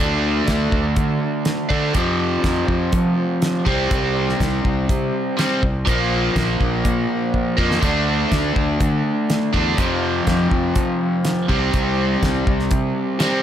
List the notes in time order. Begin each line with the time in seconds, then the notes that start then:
0.00 D2 D3 A3 D4
0.48 D2, kick, snare, closed hi-hat
0.72 D2, kick
0.96 D3, kick, closed hi-hat
1.45 snare, closed hi-hat
1.69 D3 A3 D4, kick
1.94 F2 C3 F3, kick, closed hi-hat
2.44 F2, kick, snare, closed hi-hat
2.68 F2, kick
2.93 F3, kick, closed hi-hat
3.42 snare, closed hi-hat
3.65 C2 C3 G3 C4, kick
3.91 C2, kick, closed hi-hat
4.29 snare
4.40 C2, kick, snare, closed hi-hat
4.65 C2, kick
4.89 C3, kick, closed hi-hat
5.37 C3 G3 C4, snare, closed hi-hat
5.63 C2, kick
5.85 A#1 A#2 F3 A#3, kick, closed hi-hat
6.35 A#1, kick, snare, closed hi-hat
6.60 A#1, kick
6.85 A#2, kick, closed hi-hat
7.34 kick
7.57 F2 A#2 F3 A#3, kick
7.71 snare
7.81 D2 D3 A3 D4, kick, closed hi-hat
8.32 D2, kick, snare, closed hi-hat
8.56 D2, kick
8.80 D3, kick, closed hi-hat
9.30 snare, closed hi-hat
9.53 E2 D3 A3 D4, kick
9.77 F2 C3 F3, kick, closed hi-hat
10.27 F2, kick, snare, closed hi-hat
10.51 F2, kick
10.76 F3, kick, closed hi-hat
11.25 snare, closed hi-hat
11.48 C2 C3 G3 C4, kick
11.74 C2, kick, closed hi-hat
12.23 C2, kick, snare, closed hi-hat
12.47 C2, kick
12.59 snare
12.71 C3, kick, closed hi-hat
13.19 C3 G3 C4, snare, closed hi-hat